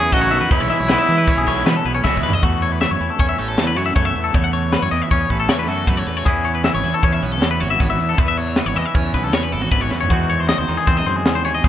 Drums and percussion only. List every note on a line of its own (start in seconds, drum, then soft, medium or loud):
0.12 kick medium
0.12 closed hi-hat medium
0.32 closed hi-hat medium
0.51 kick loud
0.51 closed hi-hat medium
0.70 closed hi-hat medium
0.89 snare loud
0.89 closed hi-hat medium
1.08 closed hi-hat medium
1.27 kick loud
1.27 closed hi-hat medium
1.47 kick medium
1.47 closed hi-hat medium
1.66 snare loud
1.66 closed hi-hat medium
1.86 closed hi-hat medium
2.05 kick loud
2.05 snare medium
2.17 kick medium
2.30 floor tom medium
2.43 kick medium
2.43 closed hi-hat medium
2.62 closed hi-hat soft
2.81 snare medium
2.81 closed hi-hat medium
3.00 closed hi-hat soft
3.19 kick loud
3.19 closed hi-hat medium
3.38 closed hi-hat medium
3.58 snare loud
3.58 closed hi-hat medium
3.77 closed hi-hat medium
3.96 kick medium
3.96 closed hi-hat medium
4.16 closed hi-hat medium
4.34 kick loud
4.34 closed hi-hat medium
4.54 closed hi-hat medium
4.72 snare loud
4.72 closed hi-hat medium
4.92 closed hi-hat medium
5.11 kick medium
5.11 closed hi-hat medium
5.30 kick medium
5.30 closed hi-hat soft
5.49 snare loud
5.49 closed hi-hat medium
5.68 closed hi-hat soft
5.87 kick loud
5.87 closed hi-hat medium
6.07 snare soft
6.07 closed hi-hat medium
6.26 kick medium
6.26 closed hi-hat medium
6.45 closed hi-hat soft
6.64 snare loud
6.64 closed hi-hat medium
6.84 closed hi-hat medium
7.03 kick loud
7.03 closed hi-hat medium
7.23 closed hi-hat medium
7.42 snare loud
7.42 closed hi-hat medium
7.62 closed hi-hat medium
7.80 kick medium
7.80 snare soft
7.80 closed hi-hat medium
8.00 closed hi-hat medium
8.18 kick loud
8.18 closed hi-hat medium
8.37 snare soft
8.37 closed hi-hat soft
8.56 snare loud
8.56 closed hi-hat medium
8.75 closed hi-hat medium
8.95 kick medium
8.95 closed hi-hat medium
9.14 kick medium
9.14 snare soft
9.14 closed hi-hat soft
9.33 snare medium
9.33 closed hi-hat medium
9.52 closed hi-hat medium
9.71 kick medium
9.71 closed hi-hat medium
9.91 snare soft
10.03 floor tom medium
10.10 kick medium
10.10 closed hi-hat medium
10.29 closed hi-hat soft
10.49 snare loud
10.49 closed hi-hat medium
10.68 snare soft
10.68 closed hi-hat medium
10.87 kick loud
10.87 snare soft
10.87 closed hi-hat medium
11.07 closed hi-hat medium
11.25 snare loud
11.25 closed hi-hat medium
11.45 snare soft
11.45 closed hi-hat medium
11.64 kick medium
11.64 closed hi-hat medium